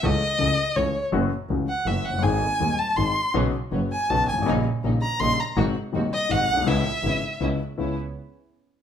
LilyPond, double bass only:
\new Staff \with { instrumentName = "Double bass" } { \clef bass \time 3/4 \key cis \minor \tempo 4 = 163 cis,8 r8 cis,8 r8 cis,8 r8 | fis,,8 r8 cis,8 r8 fis,,8 fis,,8 | gis,,8 r8 dis,8 r8 gis,,8 r8 | b,,8 r8 fis,,8 r8 b,,8 gis,,8 |
ais,,8 r8 ais,,8 r8 ais,,8 r8 | gis,,8 r8 dis,8 r8 gis,,8 b,,8 | cis,8 r8 gis,,8 r8 cis,8 r8 | cis,8 r2 r8 | }